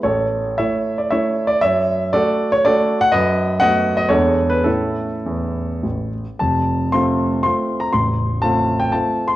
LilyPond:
<<
  \new Staff \with { instrumentName = "Grand piano" } { \time 3/4 \key a \major \tempo 4 = 117 <a' cis''>4 <cis'' e''>8. d''16 <cis'' e''>8. d''16 | <cis'' e''>4 <a' d''>8. cis''16 <a' d''>8. fis''16 | <b' dis''>4 <dis'' fis''>8. dis''16 <a' cis''>8. b'16 | <e' a'>2~ <e' a'>8 r8 |
\key f \major a''4 c'''4 c'''8. bes''16 | c'''4 a''8. g''16 a''8. c'''16 | }
  \new Staff \with { instrumentName = "Grand piano" } { \time 3/4 \key a \major a,,4 <a e'>4 <a e'>4 | fis,4 <a fis'>4 <a fis'>4 | fis,4 <a b fis'>4 <e, gis b d'>4 | <a, a cis'>4 e,4 a,,4 |
\key f \major <f,, f,>4 <a c' f'>4 <a c' f'>4 | <a,,, a,,>4 <a c' f'>4 <a c' f'>4 | }
>>